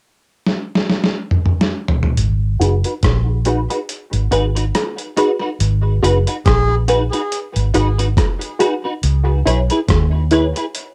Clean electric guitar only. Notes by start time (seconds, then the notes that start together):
2.60 D#4 F#4 B4
2.85 D#4 F#4 B4
3.46 D#4 F#4 B4
3.70 D#4 F#4 B4
4.31 D#4 F#4 B4
4.55 D#4 F#4 B4
5.17 D#4 F#4 B4
5.41 D#4 F#4 B4
6.03 D#4 F#4 B4
6.27 D#4 F#4 B4
6.88 D#4 F#4 B4
7.12 D#4 F#4 B4
7.74 D#4 F#4 B4
7.98 D#4 F#4 B4
8.60 D#4 F#4 B4
8.84 D#4 F#4 B4
9.46 E4 G#4 B4
9.70 E4 G#4 B4
10.32 E4 G#4 B4
10.56 E4 G#4 B4